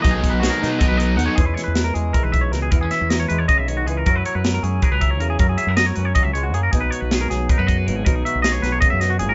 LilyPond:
<<
  \new Staff \with { instrumentName = "Clean electric guitar" } { \time 7/8 \key b \major \tempo 4 = 157 dis''16 gis'8 b'16 fis'16 ais'8 b'16 dis''16 b'16 dis''8 fis''16 cis''16 | gis'16 b'16 cis''16 b'8 ais'16 gis'8 ais'16 b'16 e''16 cis''16 ais'16 gis'16 | ais'16 gis'16 e''8 dis''16 cis''16 b'16 cis''16 dis''16 e''16 cis''16 fis'16 gis'16 ais'16 | ais'16 b'16 cis''16 b'8 ais'16 gis'8 ais'16 b'16 e''16 cis''16 ais'16 gis'16 |
ais'16 gis'16 e''8 dis''16 cis''16 b'16 cis''16 dis''16 e''16 cis''16 fis'16 gis'16 ais'16 | gis'16 b'16 cis''16 b'8 ais'16 gis'8 ais'16 b'16 dis''16 b'16 ais'16 gis'16 | ais'16 gis'16 e''8 dis''16 cis''16 b'16 cis''16 dis''16 e''16 dis''16 fis'16 gis'16 ais'16 | }
  \new Staff \with { instrumentName = "Clean electric guitar" } { \time 7/8 \key b \major << { r4 gis'8 dis'8 ais'8 dis'8 dis'16 fis'16 | <gis cis' e' gis'>8 e'8 ais'4 e'4. | b16 cis'16 e'8 ais'2~ ais'8 | e'8 ais'8 ais'4 gis'16 ais'4~ ais'16 |
e'8 gis'16 ais'16 ais'2~ ais'8 | dis'8 fis'8 gis'4 dis'16 fis'4~ fis'16 | dis'8 fis'8 gis'2~ gis'8 | } \\ { b,4 fis4. b,4 | e4. gis4. b,8 | e4. gis8 cis8 dis8 e8 | fis4. cis'4. cis8 |
fis4. cis'8 fis8 gis8 ais8 | b,4. fis4. b,8 | b,4. fis8 cis8 b,8 ais,8 | } >> }
  \new Staff \with { instrumentName = "Overdriven electric guitar" } { \time 7/8 \key b \major <b, fis b dis'>4 <b, fis b dis'>8 <fis b dis'>8 <b, fis b dis'>4 <b, fis b dis'>8 | r2. r8 | r2. r8 | r2. r8 |
r2. r8 | r2. r8 | r2. r8 | }
  \new Staff \with { instrumentName = "Fingered electric bass" } { \clef bass \time 7/8 \key b \major b,,8 r16 b,,8 r16 b,8. b,,8. dis,16 r16 | e,8 r16 e,8. e,8 r16 b,,8. cis,8 | e,8 r16 e,8. e,8 r16 b,,8. cis,8 | fis,8 r16 fis,8. fis,8 r16 cis,8. e,8 |
fis,8 r16 fis,8. fis,8 r16 cis,8. fis,8 | b,,8 r16 b,,8. b,,8 r16 fis,8. gis,,8 | b,,8 r16 b,,8. b,,8 r16 fis,8. gis,,8 | }
  \new DrumStaff \with { instrumentName = "Drums" } \drummode { \time 7/8 <hh bd>8 <hh bd>8 <hh sn>8 <hh sn>8 <hh bd>8 hh8 hh8 | <hh bd>8 <hh sn>8 <hh sn>8 hh8 <hh bd>8 <hh bd>8 <hh sn>8 | <hh bd>8 <hh sn>8 <hh sn>8 hh8 <hh bd>8 hh8 hh8 | <hh bd>8 hh8 <hh sn>8 hh8 <hh bd>8 <hh bd>8 hh8 |
<hh bd>8 hh8 <hh sn>8 hh8 <hh bd>8 hh8 hh8 | <hh bd>8 hh8 <hh sn>8 <hh sn>8 <hh bd>8 <hh bd>8 hh8 | <hh bd>8 hh8 <hh sn>8 <hh sn>8 <hh bd>8 <hh sn>8 hh8 | }
>>